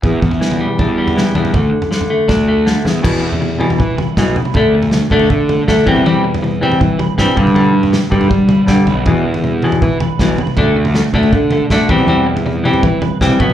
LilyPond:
<<
  \new Staff \with { instrumentName = "Clean electric guitar" } { \time 4/4 \key e \minor \tempo 4 = 160 r1 | r1 | e8 d8 g8 b8 g8 e'8 b8 e'8 | d8 d'8 d'8 fis'8 d'8 a'8 fis'8 r8 |
r8 e8 c'8 g'8 c'8 b'8 g'8 g8 | g8 d'8 d'4 d'8 b'8 b8 b'8 | r8 d8 g8 b8 g8 b'8 b8 b'8 | d8 d'8 d'8 fis'8 d'8 a'8 fis'8 r8 |
r8 e8 c'8 g'8 c'8 b'8 g'8 r8 | }
  \new Staff \with { instrumentName = "Overdriven electric guitar" } { \clef bass \time 4/4 \key e \minor e,4 e8 g8 d'8 g8 e8 d'8 | d4 d8 a8 d'8 a8 d8 e,8 | <e, b, e>8 <e, b,>8 <e, b,>8 <e, b, e>8 <e, b,>8 <e, b,>8 <e, b, e>8 <e, b,>8 | <d a d'>8 <d a>8 <d a>8 <d a d'>8 <d a>8 <d a>8 <d a d'>8 <e g c'>8 |
<e g c'>8 <e g>8 <e g>8 <e g c'>8 <e g>8 <e g>8 <e g c'>8 <g, d g>8 | <g, d g>8 <g, d>8 <g, d>8 <g, d g>8 <g, d>8 <g, d>8 <g, d g>8 <g, d>8 | <e, b, e>8 <e, b,>8 <e, b,>8 <e, b, e>8 <e, b,>8 <e, b,>8 <e, b, e>8 <e, b,>8 | <d a d'>8 <d a>8 <d a>8 <d a d'>8 <d a>8 <d a>8 <d a d'>8 <e g c'>8 |
<e g c'>8 <e g>8 <e g>8 <e g c'>8 <e g>8 <e g>8 <e g c'>8 <b, fis b>8 | }
  \new Staff \with { instrumentName = "Picked electric bass" } { \clef bass \time 4/4 \key e \minor e,8 e,4. e,4. e,8 | d,8 r4. d,4. e,8 | e,2 e8 r8 b,,8 r8 | d,4. d,8 d4 d,16 r16 e,8 |
e,2 e8 r8 g,16 r16 g,8~ | g,4. g,8 g4 g,16 r16 b,,8 | e,2 e8 r8 b,,8 r8 | d,4. d,8 d4 d,16 r16 e,8 |
e,2 e8 r8 c,16 r16 b,,8 | }
  \new DrumStaff \with { instrumentName = "Drums" } \drummode { \time 4/4 <bd tomfh>8 bd16 tomfh16 sn16 <tomfh toml>8. <bd tomfh>8. tomfh16 <sn toml>8 tomfh16 tomfh16 | <bd tomfh>8. tomfh16 sn16 tomfh8. <bd sn>4 sn8 sn8 | <cymc bd tomfh>8. tomfh16 toml8 toml16 tomfh16 bd8 <tomfh toml>8 <bd sn>8 tomfh16 toml16 | <bd tomfh>8. tomfh16 <sn toml>8 <bd toml>16 tomfh16 bd8 <tomfh toml>8 <bd sn>8 <bd tomfh>16 toml16 |
tomfh8. tomfh16 toml8 toml16 tomfh16 bd8 <tomfh toml>8 <bd sn>8 <bd tomfh>16 toml16 | tomfh8. tomfh16 <sn toml>8 <bd toml>16 tomfh16 bd8 <tomfh toml>8 <bd sn>8 tomfh8 | <bd tomfh>8. tomfh16 toml8 toml16 tomfh16 bd8 <tomfh toml>8 <bd sn>8 tomfh16 toml16 | <bd tomfh>8. tomfh16 <sn toml>8 <bd toml>16 tomfh16 bd8 <tomfh toml>8 <bd sn>8 <bd tomfh>16 toml16 |
tomfh8. tomfh16 toml8 toml16 tomfh16 bd8 <tomfh toml>8 <bd sn>8 <bd tomfh>16 toml16 | }
>>